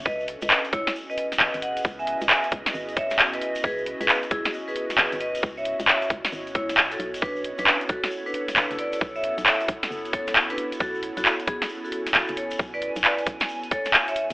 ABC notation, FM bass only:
X:1
M:4/4
L:1/16
Q:"Swing 16ths" 1/4=134
K:C#m
V:1 name="FM bass" clef=bass
C,,3 C,, z2 C,, z4 z G,,, G,,,3 | C,,3 C,, z2 C,, z G,,,6 z2 | C,,3 C,, z2 C,, z4 z G,,, G,,,3 | C,,3 C,, z2 C,, z G,,,2 C,,4 B,,, F,,, |
B,,,3 B,,, z2 B,,, z4 z F,,, F,,,3 | B,,,3 B,,, z2 B,,, z F,,,6 z2 | B,,,3 B,,, z2 B,,, z4 z F,,, F,,,3 | B,,,3 B,,, z2 B,,, z8 z |]